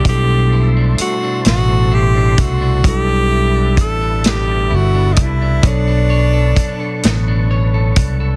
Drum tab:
HH |x-xx-x|x-xx-x|x-xx-x|
SD |---o--|---o--|---o--|
BD |o----o|o-o--o|o-o--o|